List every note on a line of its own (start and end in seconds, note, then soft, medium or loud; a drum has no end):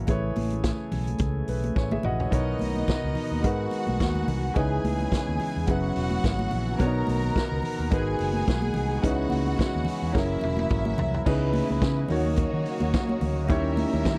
0.00 2.28 C#3 medium
0.00 2.28 E3 medium
0.07 0.30 A1 loud
0.07 2.28 A3 medium
0.07 2.30 A3 medium
0.07 1.73 E4 medium
0.07 2.30 G#4 medium
0.07 1.73 G#4 medium
0.07 1.48 B4 medium
0.07 1.74 C#5 medium
0.07 kick loud
0.07 closed hi-hat medium
0.07 low conga medium
0.36 0.70 A1 medium
0.36 open hi-hat medium
0.36 muted conga soft
0.36 high conga medium
0.50 closed hi-hat soft
0.50 high conga medium
0.64 kick loud
0.64 snare loud
0.64 closed hi-hat medium
0.91 1.14 B1 medium
0.91 open hi-hat medium
0.91 low conga medium
1.07 closed hi-hat soft
1.07 high conga medium
1.18 1.42 C#2 medium
1.18 kick loud
1.18 closed hi-hat medium
1.18 muted conga soft
1.48 1.70 B1 medium
1.48 1.75 B4 medium
1.48 open hi-hat medium
1.48 muted conga soft
1.64 closed hi-hat soft
1.64 high conga medium
1.76 1.98 A1 medium
1.76 1.91 B4 medium
1.76 2.02 C#5 medium
1.76 1.91 G#5 medium
1.76 kick loud
1.76 snare soft
1.76 muted conga soft
1.91 2.04 G#4 medium
1.91 2.04 E5 medium
1.91 high tom medium
1.91 high conga medium
2.03 2.26 A#1 medium
2.03 2.20 F#4 medium
2.03 2.20 D#5 medium
2.03 2.31 F#5 medium
2.03 mid tom medium
2.03 muted conga soft
2.03 low conga medium
2.20 2.47 E4 soft
2.20 2.32 C#5 medium
2.20 floor tom medium
2.31 2.54 B1 medium
2.31 3.41 B2 medium
2.31 4.53 D#3 medium
2.31 4.54 B3 medium
2.31 3.42 B3 medium
2.31 3.42 D#4 medium
2.31 4.53 F#4 medium
2.31 3.43 A#4 medium
2.31 3.42 A#4 medium
2.31 3.43 C#5 medium
2.31 3.42 D#5 medium
2.31 kick loud
2.31 closed hi-hat medium
2.31 muted conga soft
2.59 2.82 B1 loud
2.59 open hi-hat medium
2.59 high conga medium
2.76 high conga medium
2.88 kick medium
2.88 snare loud
2.88 closed hi-hat medium
2.88 muted conga soft
3.04 3.13 C#2 medium
3.15 open hi-hat medium
3.15 low conga medium
3.31 3.41 D#2 loud
3.42 3.66 G#2 medium
3.42 4.53 G#3 medium
3.42 4.55 G#3 medium
3.42 4.54 D#4 medium
3.42 4.54 F#4 medium
3.42 4.54 A#4 medium
3.42 4.54 B4 medium
3.42 4.53 F#5 medium
3.42 kick loud
3.42 closed hi-hat medium
3.71 open hi-hat medium
3.71 muted conga soft
3.87 3.97 B1 medium
3.87 high conga medium
4.00 4.22 D#2 loud
4.00 kick medium
4.00 snare medium
4.00 closed hi-hat medium
4.00 muted conga soft
4.16 high conga medium
4.27 4.49 C2 medium
4.27 open hi-hat medium
4.27 muted conga soft
4.27 low conga medium
4.54 4.78 C#2 loud
4.54 5.65 C#3 medium
4.54 5.66 C#3 medium
4.54 6.78 E3 medium
4.54 5.67 G#3 medium
4.54 5.66 B3 medium
4.54 5.65 C#4 medium
4.54 5.65 D#4 medium
4.54 5.66 E4 medium
4.54 5.66 G#4 medium
4.54 5.66 B4 medium
4.54 5.66 G#5 medium
4.54 kick loud
4.54 closed hi-hat medium
4.54 muted conga soft
4.83 5.05 C#2 medium
4.83 open hi-hat medium
4.83 muted conga soft
4.83 high conga medium
5.01 high conga medium
5.12 kick medium
5.12 snare medium
5.12 closed hi-hat medium
5.12 muted conga soft
5.28 5.37 D#2 medium
5.40 open hi-hat medium
5.40 muted conga soft
5.40 low conga medium
5.56 5.66 E2 medium
5.67 5.90 F#1 medium
5.67 6.79 C#3 medium
5.67 6.77 F#3 medium
5.67 6.79 F#3 medium
5.67 10.11 B3 medium
5.67 6.77 C#4 medium
5.67 6.78 E4 medium
5.67 6.78 F#4 medium
5.67 6.78 G#4 medium
5.67 6.79 B4 medium
5.67 6.78 F#5 medium
5.67 kick loud
5.67 closed hi-hat medium
5.67 muted conga soft
5.96 6.18 E1 medium
5.96 open hi-hat medium
6.11 high conga medium
6.24 6.46 G#1 medium
6.24 kick loud
6.24 snare loud
6.24 closed hi-hat soft
6.39 high conga medium
6.51 6.74 A#1 medium
6.51 open hi-hat medium
6.51 muted conga soft
6.51 low conga medium
6.78 7.02 B1 loud
6.78 7.88 B2 medium
6.78 9.01 D#3 medium
6.78 7.89 B3 medium
6.78 6.87 D4 medium
6.78 9.01 F#4 medium
6.78 7.90 A#4 medium
6.78 7.89 A#4 medium
6.78 7.90 A#4 medium
6.78 7.90 C#5 medium
6.78 7.90 A#5 medium
6.78 kick loud
6.78 closed hi-hat medium
6.78 muted conga soft
6.86 7.90 D#4 medium
7.07 7.30 B1 loud
7.07 open hi-hat medium
7.07 muted conga soft
7.07 high conga medium
7.23 high conga medium
7.36 kick loud
7.36 snare loud
7.36 closed hi-hat medium
7.52 7.61 C#2 medium
7.62 open hi-hat medium
7.62 muted conga soft
7.62 low conga medium
7.79 7.89 D#2 medium
7.90 8.14 G#1 medium
7.90 9.00 G#3 medium
7.90 10.12 G#3 medium
7.90 9.01 D#4 medium
7.90 9.01 F#4 medium
7.90 9.02 G#4 medium
7.90 9.02 A#4 medium
7.90 9.02 B4 medium
7.90 9.02 G#5 medium
7.90 kick loud
7.90 closed hi-hat medium
7.90 muted conga soft
8.19 8.41 F#1 medium
8.19 open hi-hat medium
8.19 muted conga soft
8.33 high conga medium
8.48 8.69 B1 loud
8.48 kick loud
8.48 snare loud
8.48 closed hi-hat soft
8.62 high conga medium
8.74 8.97 C2 medium
8.74 open hi-hat medium
8.74 low conga medium
9.02 9.25 C#2 loud
9.02 10.12 C#3 medium
9.02 11.24 E3 medium
9.02 10.12 C#4 medium
9.02 10.13 D#4 medium
9.02 10.13 E4 medium
9.02 10.12 F#4 medium
9.02 10.14 B4 medium
9.02 10.13 F#5 medium
9.02 kick loud
9.02 closed hi-hat medium
9.30 9.53 C#2 medium
9.30 open hi-hat medium
9.30 muted conga soft
9.30 high conga medium
9.46 high conga medium
9.57 kick loud
9.57 snare loud
9.57 closed hi-hat medium
9.57 muted conga soft
9.75 9.84 D#2 loud
9.85 open hi-hat medium
9.85 muted conga soft
9.85 low conga medium
10.02 10.12 E2 medium
10.13 10.36 F#1 loud
10.13 11.24 C#3 medium
10.13 11.23 F#3 medium
10.13 11.25 F#3 medium
10.13 11.25 A#3 medium
10.13 11.23 C#4 medium
10.13 11.24 E4 medium
10.13 11.24 G#4 medium
10.13 11.25 A#4 medium
10.13 11.24 E5 loud
10.13 kick loud
10.17 snare medium
10.41 10.64 E1 medium
10.41 high tom medium
10.41 muted conga soft
10.57 high tom medium
10.57 high conga medium
10.70 10.92 G#1 medium
10.70 kick loud
10.70 mid tom medium
10.70 muted conga soft
10.85 high conga medium
10.98 11.20 C2 medium
10.98 floor tom loud
10.98 muted conga soft
10.98 low conga medium
11.14 floor tom medium
11.26 11.60 C#2 loud
11.26 12.10 C#3 medium
11.26 13.47 C#3 medium
11.26 12.09 E3 medium
11.26 12.09 G#3 medium
11.26 12.09 B3 medium
11.26 12.10 C#4 medium
11.26 12.08 D#4 medium
11.26 12.08 E4 medium
11.26 12.10 E4 medium
11.26 12.10 B4 medium
11.26 12.09 B4 medium
11.26 13.47 D#5 medium
11.26 kick loud
11.26 crash medium
11.53 open hi-hat medium
11.53 muted conga soft
11.53 high conga medium
11.69 11.80 C#2 medium
11.69 high conga medium
11.82 12.04 C#3 loud
11.82 kick loud
11.82 snare loud
11.82 closed hi-hat medium
12.08 12.44 D#2 medium
12.08 13.46 D#3 medium
12.08 13.48 F#3 medium
12.08 13.48 A#3 medium
12.08 13.47 A#3 medium
12.08 13.47 D#4 medium
12.08 13.47 F#4 medium
12.08 13.47 A#4 medium
12.08 13.47 C#5 medium
12.08 13.48 C#5 medium
12.08 open hi-hat medium
12.08 muted conga soft
12.08 low conga medium
12.25 high conga medium
12.36 kick loud
12.36 closed hi-hat medium
12.36 muted conga soft
12.53 12.63 D#3 medium
12.66 open hi-hat medium
12.80 12.91 D#2 medium
12.80 high conga medium
12.94 kick loud
12.94 snare loud
12.94 closed hi-hat medium
13.09 high conga medium
13.21 13.49 D2 medium
13.21 open hi-hat medium
13.21 muted conga soft
13.21 low conga medium
13.48 13.83 D#2 loud
13.48 14.18 D#3 medium
13.48 14.18 G3 medium
13.48 14.18 A#3 medium
13.48 14.18 C#4 medium
13.48 14.18 E4 medium
13.48 14.18 G4 medium
13.48 14.18 A#4 medium
13.48 14.18 C#5 medium
13.48 14.18 E5 medium
13.48 kick loud
13.48 closed hi-hat medium
13.48 muted conga soft
13.77 open hi-hat medium
13.77 muted conga soft
13.77 high conga medium
13.93 14.03 D#2 medium
13.93 high conga medium
14.05 14.18 D#3 loud
14.05 kick loud
14.05 snare loud
14.05 closed hi-hat medium